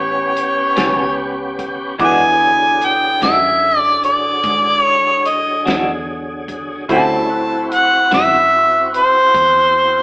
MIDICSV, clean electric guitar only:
0, 0, Header, 1, 2, 480
1, 0, Start_track
1, 0, Tempo, 816327
1, 1170, Time_signature, 12, 3, 24, 8
1, 5895, End_track
2, 0, Start_track
2, 0, Title_t, "Clean electric guitar"
2, 0, Program_c, 0, 27
2, 445, Note_on_c, 0, 61, 69
2, 449, Note_on_c, 0, 59, 58
2, 451, Note_on_c, 0, 55, 59
2, 457, Note_on_c, 0, 45, 48
2, 592, Note_off_c, 0, 61, 0
2, 594, Note_off_c, 0, 59, 0
2, 595, Note_off_c, 0, 55, 0
2, 598, Note_off_c, 0, 45, 0
2, 1166, Note_on_c, 0, 52, 56
2, 1168, Note_on_c, 0, 56, 62
2, 1172, Note_on_c, 0, 62, 64
2, 1176, Note_on_c, 0, 66, 66
2, 1312, Note_off_c, 0, 52, 0
2, 1313, Note_off_c, 0, 56, 0
2, 1315, Note_off_c, 0, 62, 0
2, 1317, Note_off_c, 0, 66, 0
2, 1885, Note_on_c, 0, 62, 48
2, 1886, Note_on_c, 0, 66, 56
2, 1890, Note_on_c, 0, 56, 46
2, 1893, Note_on_c, 0, 52, 42
2, 2032, Note_off_c, 0, 62, 0
2, 2032, Note_off_c, 0, 66, 0
2, 2034, Note_off_c, 0, 56, 0
2, 2035, Note_off_c, 0, 52, 0
2, 3325, Note_on_c, 0, 66, 59
2, 3330, Note_on_c, 0, 62, 58
2, 3331, Note_on_c, 0, 56, 53
2, 3337, Note_on_c, 0, 52, 51
2, 3472, Note_off_c, 0, 66, 0
2, 3474, Note_off_c, 0, 62, 0
2, 3475, Note_off_c, 0, 56, 0
2, 3478, Note_off_c, 0, 52, 0
2, 4047, Note_on_c, 0, 50, 67
2, 4053, Note_on_c, 0, 64, 68
2, 4054, Note_on_c, 0, 60, 70
2, 4058, Note_on_c, 0, 66, 68
2, 4193, Note_off_c, 0, 50, 0
2, 4196, Note_off_c, 0, 60, 0
2, 4196, Note_off_c, 0, 64, 0
2, 4198, Note_off_c, 0, 66, 0
2, 4769, Note_on_c, 0, 66, 63
2, 4771, Note_on_c, 0, 64, 53
2, 4776, Note_on_c, 0, 50, 44
2, 4777, Note_on_c, 0, 60, 46
2, 4915, Note_off_c, 0, 64, 0
2, 4915, Note_off_c, 0, 66, 0
2, 4918, Note_off_c, 0, 50, 0
2, 4918, Note_off_c, 0, 60, 0
2, 5895, End_track
0, 0, End_of_file